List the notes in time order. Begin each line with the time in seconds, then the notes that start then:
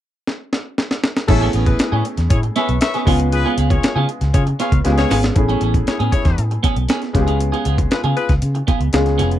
0.27 snare
0.53 snare
0.78 snare
0.91 snare
1.04 snare
1.17 snare
1.27 A1 A3 B3 C#4 E4 G#4 A4, muted clean electric guitar stroke, kick, crash
1.41 B3 C#4 G#4
1.53 A1 B3 C#4 G#4, closed hi-hat
1.66 E4 G#4 B4, muted clean electric guitar stroke, kick, closed hi-hat
1.79 muted fingered electric bass stroke, muted clean electric guitar stroke, snare, closed hi-hat
1.92 A2 B3 C#4 G#4
2.05 muted clean electric guitar stroke, closed hi-hat
2.17 E2, muted clean electric guitar stroke, snare, closed hi-hat
2.30 A2 E4 G#4 C#5, kick, closed hi-hat
2.43 muted clean electric guitar stroke, closed hi-hat
2.56 B3 C#4 G#4 B4 C#5 E5, snare, closed hi-hat
2.69 B1, muted clean electric guitar stroke, closed hi-hat
2.81 B4 C#5 E5, muted clean electric guitar stroke, snare, closed hi-hat
2.94 B3 C#4 G#4, snare, closed hi-hat
3.05 C#2 G#3 B3 C#4 F4 G#4, kick, snare, open hi-hat
3.20 muted clean electric guitar stroke, closed hi-hat
3.32 F4 G#4 B4, muted clean electric guitar stroke, closed hi-hat
3.45 B3 F4 G#4
3.58 C#2 B3 F4 G#4, closed hi-hat
3.70 F4 G#4 C#5, muted clean electric guitar stroke, kick, closed hi-hat
3.83 muted clean electric guitar stroke, snare, closed hi-hat
3.96 C#3 B3 F4 G#4
4.09 muted clean electric guitar stroke, closed hi-hat
4.21 C#2, muted clean electric guitar stroke, snare, closed hi-hat
4.34 C#3 F4 G#4 C#5, muted clean electric guitar stroke, kick, closed hi-hat
4.47 muted clean electric guitar stroke, closed hi-hat
4.60 B3 F4 G#4 B4 C#5 F5, snare, closed hi-hat
4.72 C#2, muted clean electric guitar stroke, kick, closed hi-hat
4.84 C#2 G#3 B3 C#4 F4 G4, snare, closed hi-hat
4.92 G#4
4.98 F4 G#4 C#5, muted clean electric guitar stroke, snare, closed hi-hat
5.11 G#1 B3 F4 G#4, snare, open hi-hat
5.23 muted clean electric guitar stroke, snare, closed hi-hat
5.35 A1 A3 B3 C#4 E4 G#4, muted clean electric guitar stroke, kick, closed hi-hat
5.49 B3 C#4 G#4, closed hi-hat
5.61 A1 B3 C#4 G#4, closed hi-hat
5.74 muted clean electric guitar stroke, kick, closed hi-hat
5.87 E4 G#4 C#5, muted clean electric guitar stroke, muted fingered electric bass stroke, snare, closed hi-hat
5.99 A2 B3 C#4 G#4, closed hi-hat
6.12 E4 G#4 C#5, muted clean electric guitar stroke, kick, closed hi-hat
6.25 E2, muted clean electric guitar stroke, kick, snare, closed hi-hat
6.38 A2, closed hi-hat
6.51 muted clean electric guitar stroke, closed hi-hat
6.63 B3 C#4 G#4, kick, closed hi-hat
6.76 B1, muted clean electric guitar stroke, closed hi-hat
6.89 B3 C#4 G#4, snare, closed hi-hat
7.02 muted clean electric guitar stroke, snare, closed hi-hat
7.13 C#2 G#3 B3 C#4 F4 G4, muted clean electric guitar stroke, kick, snare, closed hi-hat
7.22 G#4
7.27 B3 F4 G#4, closed hi-hat
7.40 muted clean electric guitar stroke, closed hi-hat
7.52 B3 F4 G#4, closed hi-hat
7.65 C#2 B3 F4 G#4, closed hi-hat
7.78 muted clean electric guitar stroke, kick, closed hi-hat
7.91 F4 G#4 B4, muted clean electric guitar stroke, muted fingered electric bass stroke, snare, closed hi-hat
8.04 C#3 B3 F4 G#4, closed hi-hat
8.17 F4 G#4 B4, muted clean electric guitar stroke, closed hi-hat
8.29 C#2, muted clean electric guitar stroke, kick, snare, closed hi-hat
8.42 C#3, closed hi-hat
8.55 muted clean electric guitar stroke, closed hi-hat
8.67 B3 F4 G#4, kick, closed hi-hat
8.80 C#2, muted clean electric guitar stroke, closed hi-hat
8.93 C#2 G#3 B3 C#4 F4 G#4, snare, closed hi-hat
9.06 muted clean electric guitar stroke, snare, closed hi-hat
9.18 F1 B3 F4 G#4, snare, closed hi-hat
9.31 muted clean electric guitar stroke, closed hi-hat